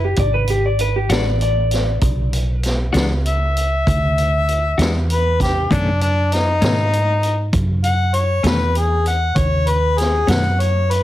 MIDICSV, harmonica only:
0, 0, Header, 1, 2, 480
1, 0, Start_track
1, 0, Tempo, 612245
1, 1584, Time_signature, 12, 3, 24, 8
1, 8648, End_track
2, 0, Start_track
2, 0, Title_t, "Harmonica"
2, 0, Program_c, 0, 22
2, 0, Note_on_c, 0, 64, 79
2, 115, Note_off_c, 0, 64, 0
2, 2561, Note_on_c, 0, 76, 84
2, 3962, Note_off_c, 0, 76, 0
2, 4010, Note_on_c, 0, 71, 62
2, 4230, Note_off_c, 0, 71, 0
2, 4251, Note_on_c, 0, 67, 67
2, 4471, Note_off_c, 0, 67, 0
2, 4481, Note_on_c, 0, 62, 73
2, 4706, Note_off_c, 0, 62, 0
2, 4720, Note_on_c, 0, 62, 80
2, 4962, Note_on_c, 0, 63, 79
2, 4973, Note_off_c, 0, 62, 0
2, 5884, Note_off_c, 0, 63, 0
2, 6152, Note_on_c, 0, 78, 94
2, 6385, Note_on_c, 0, 73, 80
2, 6397, Note_off_c, 0, 78, 0
2, 6640, Note_on_c, 0, 71, 71
2, 6652, Note_off_c, 0, 73, 0
2, 6873, Note_on_c, 0, 68, 68
2, 6884, Note_off_c, 0, 71, 0
2, 7101, Note_off_c, 0, 68, 0
2, 7113, Note_on_c, 0, 78, 73
2, 7349, Note_on_c, 0, 73, 74
2, 7361, Note_off_c, 0, 78, 0
2, 7593, Note_on_c, 0, 71, 84
2, 7605, Note_off_c, 0, 73, 0
2, 7827, Note_on_c, 0, 68, 71
2, 7838, Note_off_c, 0, 71, 0
2, 8058, Note_off_c, 0, 68, 0
2, 8069, Note_on_c, 0, 78, 97
2, 8310, Note_on_c, 0, 73, 80
2, 8322, Note_off_c, 0, 78, 0
2, 8555, Note_on_c, 0, 71, 70
2, 8567, Note_off_c, 0, 73, 0
2, 8648, Note_off_c, 0, 71, 0
2, 8648, End_track
0, 0, End_of_file